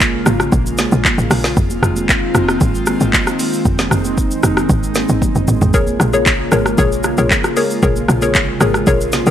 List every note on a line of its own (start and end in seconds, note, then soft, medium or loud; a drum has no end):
0.00 0.21 A#1 loud
0.00 1.53 C#3 medium
0.00 1.53 G#3 medium
0.00 1.53 A#3 medium
0.00 1.53 F4 medium
0.00 kick medium
0.00 clap loud
0.00 shaker medium
0.26 0.50 G#1 loud
0.26 cross-stick loud
0.26 high conga medium
0.26 low conga medium
0.26 shaker loud
0.40 cross-stick medium
0.40 high conga medium
0.40 shaker soft
0.52 0.88 A#1 loud
0.52 kick loud
0.52 low conga medium
0.52 shaker medium
0.66 shaker medium
0.78 snare medium
0.78 high conga medium
0.78 shaker loud
0.92 1.03 A#1 loud
0.92 shaker medium
1.05 kick medium
1.05 clap loud
1.05 high conga medium
1.05 low conga medium
1.05 shaker medium
1.18 1.29 G#1 medium
1.18 shaker medium
1.31 1.54 A#1 medium
1.31 cross-stick loud
1.31 open hi-hat medium
1.31 high conga medium
1.31 shaker medium
1.44 snare medium
1.44 shaker medium
1.57 1.80 F1 loud
1.57 5.70 D#3 medium
1.57 9.31 G#3 medium
1.57 5.70 C4 medium
1.57 3.63 F4 medium
1.57 kick loud
1.57 low conga medium
1.57 shaker medium
1.70 high conga medium
1.70 shaker medium
1.82 2.29 F1 loud
1.82 cross-stick medium
1.82 shaker medium
1.96 high conga medium
1.96 shaker medium
2.09 kick medium
2.09 clap loud
2.09 shaker medium
2.35 2.58 F1 loud
2.35 cross-stick loud
2.35 high conga medium
2.35 low conga medium
2.35 shaker loud
2.49 cross-stick loud
2.49 high conga medium
2.49 shaker soft
2.61 2.96 G#1 loud
2.61 kick loud
2.61 low conga medium
2.61 shaker medium
2.75 shaker medium
2.86 cross-stick medium
2.86 high conga medium
2.86 shaker loud
3.00 3.12 G#1 medium
3.00 shaker medium
3.13 kick medium
3.13 clap loud
3.13 high conga medium
3.13 low conga medium
3.13 shaker medium
3.27 cross-stick medium
3.27 shaker medium
3.39 open hi-hat medium
3.39 high conga medium
3.39 shaker medium
3.53 shaker medium
3.65 3.89 F1 loud
3.65 5.72 D#4 medium
3.65 kick loud
3.65 low conga medium
3.65 shaker medium
3.79 snare medium
3.79 high conga medium
3.79 shaker medium
3.91 4.38 F1 loud
3.91 cross-stick medium
3.91 shaker medium
4.05 high conga medium
4.05 shaker medium
4.18 kick medium
4.18 shaker medium
4.31 shaker medium
4.43 4.67 F1 medium
4.43 cross-stick loud
4.43 high conga medium
4.43 low conga medium
4.43 shaker loud
4.57 cross-stick loud
4.57 high conga medium
4.57 shaker soft
4.69 5.05 G#1 loud
4.69 kick loud
4.69 low conga medium
4.69 shaker medium
4.83 shaker medium
4.95 snare medium
4.95 high conga medium
4.95 shaker loud
5.09 5.21 G#1 medium
5.09 shaker medium
5.22 kick medium
5.22 high tom medium
5.22 high conga medium
5.22 low conga medium
5.22 shaker medium
5.35 5.47 F1 medium
5.35 shaker medium
5.48 5.60 G#1 medium
5.48 mid tom loud
5.48 high conga medium
5.48 shaker medium
5.61 5.75 G#1 medium
5.61 floor tom loud
5.61 shaker medium
5.74 5.97 A#1 loud
5.74 9.31 C#3 medium
5.74 7.81 A#3 medium
5.74 9.31 F4 medium
5.74 6.10 G#4 medium
5.74 6.11 A#4 medium
5.74 6.11 C#5 loud
5.74 kick loud
5.74 low conga medium
5.74 shaker medium
5.87 high conga medium
5.87 shaker medium
6.00 6.47 A#1 loud
6.00 cross-stick medium
6.00 shaker medium
6.13 6.24 G#4 medium
6.13 6.25 A#4 medium
6.13 6.25 C#5 medium
6.13 high conga medium
6.13 shaker medium
6.26 kick loud
6.26 clap loud
6.26 shaker medium
6.52 6.76 G#1 medium
6.52 6.64 G#4 medium
6.52 6.64 A#4 medium
6.52 6.64 C#5 medium
6.52 cross-stick medium
6.52 high conga medium
6.52 low conga medium
6.52 shaker loud
6.66 cross-stick medium
6.66 high conga medium
6.66 shaker soft
6.78 7.14 A#1 loud
6.78 6.90 G#4 medium
6.78 6.90 A#4 medium
6.78 6.90 C#5 loud
6.78 kick loud
6.78 low conga medium
6.78 shaker medium
6.92 shaker medium
7.04 cross-stick medium
7.04 high conga medium
7.04 shaker loud
7.17 7.29 A#1 medium
7.17 7.29 G#4 medium
7.17 7.29 A#4 medium
7.17 7.29 C#5 medium
7.17 shaker medium
7.30 kick medium
7.30 clap loud
7.30 high conga medium
7.30 low conga medium
7.30 shaker medium
7.44 cross-stick medium
7.44 shaker medium
7.56 7.68 G#4 medium
7.56 7.69 A#4 medium
7.56 7.69 C#5 medium
7.56 open hi-hat medium
7.56 high conga medium
7.56 shaker medium
7.71 shaker medium
7.82 8.06 A#1 loud
7.82 9.31 C3 medium
7.82 8.19 G#4 medium
7.82 8.19 A#4 medium
7.82 8.19 C#5 loud
7.82 kick loud
7.82 low conga medium
7.82 shaker medium
7.96 high conga medium
7.96 shaker medium
8.08 8.55 A#1 loud
8.08 cross-stick medium
8.08 shaker medium
8.22 8.33 G#4 medium
8.22 8.33 A#4 medium
8.22 8.33 C#5 medium
8.22 high conga medium
8.22 shaker medium
8.35 kick medium
8.35 clap loud
8.35 shaker medium
8.61 8.84 G#1 loud
8.61 8.73 G#4 medium
8.61 8.73 A#4 medium
8.61 8.73 C#5 medium
8.61 cross-stick loud
8.61 high conga medium
8.61 low conga medium
8.61 shaker loud
8.74 cross-stick medium
8.74 shaker soft
8.87 9.22 A#1 loud
8.87 8.99 G#4 medium
8.87 8.99 A#4 medium
8.87 8.99 C#5 loud
8.87 kick loud
8.87 low conga medium
8.87 shaker medium
9.01 shaker medium
9.12 snare medium
9.12 high conga medium
9.12 shaker loud
9.26 9.31 A#1 loud
9.26 9.31 G#4 medium
9.26 9.31 A#4 medium
9.26 9.31 C#5 medium
9.26 shaker medium